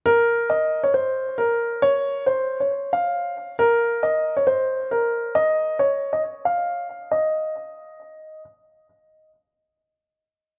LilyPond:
\new Staff \with { instrumentName = "Grand piano" } { \time 4/4 \key ees \mixolydian \tempo 4 = 136 bes'4 ees''8. des''16 c''4 bes'4 | des''4 c''8. des''8. f''4. | bes'4 ees''8. des''16 c''4 bes'4 | ees''4 des''8. ees''16 r8 f''4. |
ees''2. r4 | r1 | }